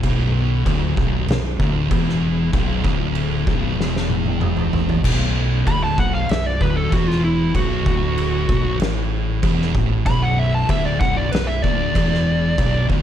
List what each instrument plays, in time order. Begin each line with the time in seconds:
0.03 fingered electric bass B0, distorted electric guitar B1, kick, crash
0.66 fingered electric bass D1, distorted electric guitar D2, kick, crash
0.96 fingered electric bass B0, distorted electric guitar B1, kick
1.27 fingered electric bass B0, distorted electric guitar B1, snare, crash
1.59 fingered electric bass D1, distorted electric guitar D2, kick
1.91 fingered electric bass E1, distorted electric guitar E2, kick, crash
2.09 snare
2.53 fingered electric bass B0, distorted electric guitar B1, kick, crash
2.84 fingered electric bass D1, distorted electric guitar D2, kick
3.15 crash
3.47 fingered electric bass B0, distorted electric guitar B1, kick
3.78 fingered electric bass E1, distorted electric guitar E2, snare
3.96 snare
4.10 high tom
4.26 high tom
4.41 mid tom
4.57 mid tom
4.73 floor tom
4.89 floor tom
5.04 fingered electric bass B0, distorted electric guitar B1, kick, crash
5.67 fingered electric bass D1, distorted electric guitar D2, lead electric guitar B5, kick, crash
5.84 lead electric guitar A5
5.98 fingered electric bass B0, distorted electric guitar B1, lead electric guitar F#5, kick
6.14 lead electric guitar F5
6.29 fingered electric bass B0, distorted electric guitar B1, lead electric guitar E5, snare, crash
6.46 lead electric guitar D5
6.61 fingered electric bass D1, distorted electric guitar D2, lead electric guitar B4, kick
6.77 lead electric guitar A4
6.92 fingered electric bass E1, distorted electric guitar E2, lead electric guitar F#4, kick, crash
7.08 lead electric guitar F4, snare
7.24 lead electric guitar E4
7.54 fingered electric bass B0, distorted electric guitar B1, lead electric guitar F#4, kick, crash
7.86 fingered electric bass D1, distorted electric guitar D2, kick
8.18 crash
8.48 fingered electric bass B0, distorted electric guitar B1, kick
8.80 fingered electric bass A1, distorted electric guitar A2, snare, crash
9.43 fingered electric bass E1, distorted electric guitar E2, kick, crash
9.61 snare
9.74 fingered electric bass A1, distorted electric guitar A2, kick
10.05 fingered electric bass B0, distorted electric guitar B1, lead electric guitar B5, kick, crash
10.23 lead electric guitar F#5
10.39 lead electric guitar E5
10.55 lead electric guitar A5
10.68 fingered electric bass D1, distorted electric guitar D2, lead electric guitar E5, kick, crash
10.85 lead electric guitar D5
11.00 fingered electric bass B0, distorted electric guitar B1, lead electric guitar F#5, kick
11.17 lead electric guitar D5
11.32 fingered electric bass B0, distorted electric guitar B1, lead electric guitar B4, snare, crash
11.47 lead electric guitar E5
11.62 fingered electric bass D1, distorted electric guitar D2, lead electric guitar D5, kick
11.95 fingered electric bass E1, distorted electric guitar E2, kick, crash
12.14 snare
12.57 fingered electric bass B0, distorted electric guitar B1, kick, crash
12.90 fingered electric bass D1, distorted electric guitar D2, kick